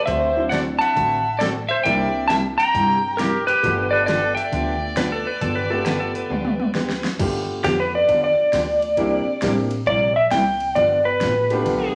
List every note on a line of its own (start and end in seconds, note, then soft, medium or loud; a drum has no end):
0.05 0.78 D2 medium
0.05 0.29 D3 medium
0.05 0.29 A3 medium
0.05 0.30 C4 medium
0.05 0.29 F#4 medium
0.05 0.30 A4 medium
0.05 0.47 C5 medium
0.05 0.49 C5 medium
0.05 0.49 E5 medium
0.05 kick soft
0.05 open hi-hat soft
0.35 0.92 F#3 medium
0.35 0.93 C4 medium
0.35 0.93 D4 medium
0.35 0.93 E4 medium
0.49 0.63 D3 medium
0.49 0.63 A3 medium
0.49 0.64 C4 medium
0.49 0.64 F#4 medium
0.49 0.64 A4 medium
0.49 0.63 D5 medium
0.49 0.60 D5 medium
0.49 0.58 F#5 medium
0.49 snare medium
0.49 closed hi-hat medium
0.78 1.35 E5 medium
0.78 1.36 F#5 medium
0.78 1.41 A5 loud
0.78 open hi-hat soft
0.95 1.67 A1 medium
0.95 1.18 D3 medium
0.95 1.18 A3 medium
0.95 1.18 C4 medium
0.95 1.19 F#4 medium
0.95 1.19 A4 medium
0.95 kick soft
0.95 open hi-hat soft
1.39 1.52 D3 medium
1.39 1.52 A3 medium
1.39 1.52 C4 medium
1.39 1.53 F#4 medium
1.39 1.52 A4 medium
1.39 1.49 A4 medium
1.39 1.53 A4 medium
1.39 1.47 D5 medium
1.39 snare medium
1.39 closed hi-hat medium
1.69 1.83 C5 medium
1.69 1.84 C5 medium
1.69 1.85 E5 loud
1.84 2.56 C2 medium
1.84 2.07 C3 medium
1.84 2.07 G3 medium
1.84 3.09 A#3 medium
1.84 2.07 A#3 medium
1.84 3.09 C4 medium
1.84 3.09 D4 medium
1.84 3.10 E4 medium
1.84 2.07 E4 medium
1.84 2.07 G4 medium
1.84 2.26 D5 medium
1.84 2.27 E5 medium
1.84 2.26 G5 medium
1.84 kick soft
1.84 open hi-hat soft
2.28 2.41 C3 medium
2.28 2.41 G3 medium
2.28 2.42 A#3 medium
2.28 2.42 E4 medium
2.28 2.42 G4 medium
2.28 2.42 E5 medium
2.28 2.38 E5 medium
2.28 2.36 A5 medium
2.28 snare medium
2.28 closed hi-hat medium
2.58 3.14 G5 medium
2.58 3.15 G5 medium
2.58 3.20 A#5 loud
2.58 open hi-hat soft
2.74 3.46 G2 medium
2.74 2.96 C3 medium
2.74 2.97 G3 medium
2.74 2.97 A#3 medium
2.74 2.97 E4 medium
2.74 2.97 G4 medium
2.74 kick soft
2.74 open hi-hat soft
3.17 3.30 C3 medium
3.17 3.31 G3 medium
3.17 3.31 A#3 medium
3.17 3.31 E4 medium
3.17 3.45 G4 medium
3.17 3.46 G4 medium
3.17 3.31 G4 medium
3.17 3.47 A#4 medium
3.17 snare medium
3.17 closed hi-hat medium
3.46 3.88 G4 medium
3.46 3.90 G4 medium
3.46 3.91 B4 loud
3.46 open hi-hat soft
3.63 4.34 G1 medium
3.63 3.86 D3 medium
3.63 3.86 F3 medium
3.63 4.87 A3 medium
3.63 4.88 B3 medium
3.63 3.86 B3 medium
3.63 3.86 D4 medium
3.63 4.88 F4 medium
3.63 4.88 G4 medium
3.63 3.86 G4 medium
3.63 kick soft
3.63 open hi-hat soft
3.91 4.06 A4 medium
3.91 4.07 B4 medium
3.91 4.05 D5 medium
4.06 4.20 D3 medium
4.06 4.20 F3 medium
4.06 4.20 B3 medium
4.06 4.20 D4 medium
4.06 4.20 G4 medium
4.06 4.34 A4 medium
4.06 4.35 B4 medium
4.06 4.36 D5 medium
4.06 snare medium
4.06 closed hi-hat soft
4.35 6.71 D5 medium
4.35 6.71 E5 medium
4.35 6.70 G5 medium
4.35 open hi-hat soft
4.52 5.23 D2 medium
4.52 4.74 D3 medium
4.52 4.75 F3 medium
4.52 4.75 B3 medium
4.52 4.75 D4 medium
4.52 4.75 G4 medium
4.52 kick soft
4.52 open hi-hat soft
4.96 5.08 D3 medium
4.96 5.09 F3 medium
4.96 5.09 B3 medium
4.96 5.09 D4 medium
4.96 5.09 G4 medium
4.96 5.11 B4 loud
4.96 snare medium
4.96 closed hi-hat medium
5.12 5.26 A4 medium
5.27 5.41 B4 medium
5.41 6.12 G1 medium
5.41 5.63 D3 medium
5.41 5.64 F3 medium
5.41 5.64 B3 medium
5.41 5.64 D4 medium
5.41 5.64 G4 medium
5.41 5.56 A4 medium
5.41 kick soft
5.41 open hi-hat soft
5.55 5.70 B4 loud
5.70 6.27 A3 medium
5.70 6.27 B3 medium
5.70 6.27 F4 medium
5.70 6.28 G4 medium
5.70 5.85 A4 medium
5.85 5.97 D3 medium
5.85 5.98 F3 medium
5.85 5.98 B3 medium
5.85 5.98 D4 medium
5.85 5.98 G4 medium
5.85 6.00 B4 medium
5.85 snare medium
5.85 closed hi-hat medium
6.00 6.15 A4 medium
6.15 7.02 B4 medium
6.15 open hi-hat soft
6.30 7.01 D2 medium
6.30 6.52 D3 medium
6.30 6.53 F3 medium
6.30 6.53 B3 medium
6.30 6.53 D4 medium
6.30 6.53 G4 medium
6.30 mid tom soft
6.45 mid tom medium
6.60 mid tom medium
6.74 6.86 D3 medium
6.74 6.86 F3 medium
6.74 6.86 B3 medium
6.74 6.87 D4 medium
6.74 6.87 G4 medium
6.74 snare medium
6.89 snare medium
7.04 snare medium
7.19 7.63 G2 medium
7.19 7.41 D3 medium
7.19 7.42 F3 medium
7.19 8.44 A3 medium
7.19 7.41 B3 medium
7.19 8.44 B3 medium
7.19 7.42 D4 medium
7.19 8.44 D4 soft
7.19 8.45 F4 medium
7.19 7.42 G4 medium
7.19 8.44 G4 medium
7.19 kick medium
7.19 crash medium
7.63 8.07 F2 medium
7.63 7.75 D3 medium
7.63 7.76 F3 medium
7.63 7.76 B3 medium
7.63 7.76 D4 medium
7.63 7.79 G4 medium
7.63 7.76 G4 medium
7.63 kick soft
7.63 snare medium
7.63 hi-hat pedal medium
7.63 ride medium
7.80 7.94 B4 medium
7.95 8.23 D5 medium
8.08 8.36 E2 medium
8.08 8.31 D3 medium
8.08 8.31 F3 medium
8.08 8.31 B3 medium
8.08 8.31 D4 medium
8.08 8.31 G4 medium
8.08 kick soft
8.08 ride medium
8.24 9.53 D5 medium
8.37 muted upright bass stroke soft
8.53 8.96 D2 medium
8.53 8.65 D3 medium
8.53 8.65 F3 medium
8.53 8.65 B3 medium
8.53 8.65 D4 medium
8.53 8.65 G4 medium
8.53 kick soft
8.53 snare medium
8.53 hi-hat pedal medium
8.53 ride medium
8.82 ride soft
8.97 9.25 C2 medium
8.97 9.20 C3 medium
8.97 9.20 G3 medium
8.97 9.24 A#3 medium
8.97 9.20 A#3 medium
8.97 9.24 C4 medium
8.97 9.24 D4 medium
8.97 9.24 E4 medium
8.97 9.20 E4 medium
8.97 9.24 G4 medium
8.97 9.20 G4 medium
8.97 kick soft
8.97 ride medium
9.26 muted upright bass stroke soft
9.41 9.85 A1 medium
9.41 9.54 C3 medium
9.41 9.54 G3 medium
9.41 9.68 A#3 medium
9.41 9.54 A#3 medium
9.41 9.68 C4 medium
9.41 9.69 D4 medium
9.41 9.54 E4 medium
9.41 9.69 E4 medium
9.41 9.54 G4 loud
9.41 9.69 G4 medium
9.41 kick soft
9.41 snare medium
9.41 hi-hat pedal medium
9.41 ride medium
9.71 ride medium
9.86 10.30 A#1 medium
9.86 10.09 C3 medium
9.86 10.09 G3 medium
9.86 10.09 A#3 medium
9.86 10.09 E4 medium
9.86 10.09 G4 medium
9.86 10.15 D5 loud
9.86 kick soft
10.16 10.31 E5 medium
10.31 10.75 C2 medium
10.31 10.43 C3 medium
10.31 10.43 G3 medium
10.31 10.43 A#3 medium
10.31 10.43 E4 medium
10.31 10.43 G4 medium
10.31 10.75 G5 medium
10.31 kick soft
10.31 snare medium
10.31 hi-hat pedal medium
10.31 ride medium
10.60 ride soft
10.75 11.19 G1 medium
10.75 10.98 D3 medium
10.75 10.98 F3 medium
10.75 10.98 B3 medium
10.75 10.99 D4 medium
10.75 10.99 G4 medium
10.75 11.04 D5 medium
10.75 kick soft
10.75 ride medium
11.05 11.92 B4 medium
11.21 11.64 A1 medium
11.21 11.33 D3 medium
11.21 11.33 F3 medium
11.21 11.33 B3 medium
11.21 11.33 D4 medium
11.21 11.33 G4 medium
11.21 kick soft
11.21 snare medium
11.21 hi-hat pedal medium
11.21 ride medium
11.50 11.95 A3 medium
11.50 11.95 B3 medium
11.50 11.95 D4 medium
11.50 11.95 F4 medium
11.50 11.95 G4 medium
11.50 ride medium
11.65 11.93 B1 medium
11.65 11.87 D3 medium
11.65 11.88 F3 medium
11.65 11.88 B3 medium
11.65 11.88 D4 medium
11.65 11.88 G4 medium
11.65 kick soft
11.65 ride medium